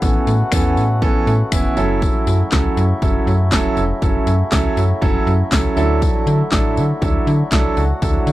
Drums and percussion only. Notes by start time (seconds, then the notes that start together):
0.02 kick, tambourine
0.27 tambourine
0.52 finger snap, kick, tambourine
0.77 tambourine
1.02 kick, tambourine
1.27 tambourine
1.52 finger snap, kick, tambourine
1.77 tambourine
2.02 kick, tambourine
2.27 tambourine
2.52 kick, snare, clap, tambourine
2.77 tambourine
3.02 kick, tambourine
3.28 tambourine
3.52 kick, snare, clap, tambourine
3.77 tambourine
4.02 kick, tambourine
4.27 tambourine
4.52 kick, snare, clap, tambourine
4.77 tambourine
5.02 kick, tambourine
5.27 tambourine
5.52 kick, snare, clap, tambourine
5.77 tambourine
6.02 kick, tambourine
6.27 tambourine
6.52 kick, snare, clap, tambourine
6.77 tambourine
7.02 kick, tambourine
7.27 tambourine
7.52 kick, snare, clap, tambourine
7.77 tambourine
8.02 kick, tambourine
8.27 tambourine